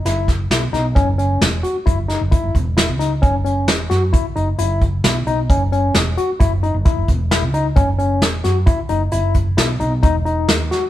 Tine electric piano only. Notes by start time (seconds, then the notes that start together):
0.06 E4
0.51 E4
0.73 D#4
0.95 C#4
1.18 C#4
1.63 F#4
1.86 E4
2.08 D#4
2.31 E4
2.77 E4
2.99 D#4
3.22 C#4
3.44 C#4
3.90 F#4
4.13 E4
4.36 D#4
4.59 E4
5.05 E4
5.27 D#4
5.50 C#4
5.72 C#4
6.17 F#4
6.40 E4
6.63 D#4
6.85 E4
7.31 E4
7.54 D#4
7.76 C#4
7.98 C#4
8.44 F#4
8.66 E4
8.89 D#4
9.12 E4
9.57 E4
9.80 D#4
10.03 D#4
10.25 D#4
10.71 F#4